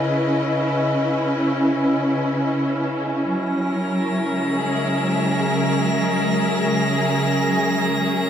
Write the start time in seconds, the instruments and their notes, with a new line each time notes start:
Already playing: string section C#3 C#4 E4 B4 D#5
3.28 synth drone C#3 G#3, string section F#3, synth texture A#6
3.59 string section A#4
3.94 string section E5
4.48 string section G#4